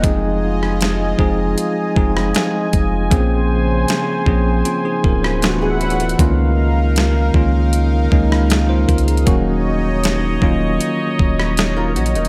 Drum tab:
HH |x-------x-------x-------x---x---|x-------x-------x-------x---xxxx|x-------x-------x-------x---xxxx|x-------x-------x-------x---xxxx|
SD |------r-o-------------r-o-------|--------o-------------r-o-------|--------o-------------r-o-------|--------o-------------r-o-------|
BD |o-----------o-------o-------o---|o-----------o-------o-----------|o-----------o-------o-------o---|o-----------o-------o-----------|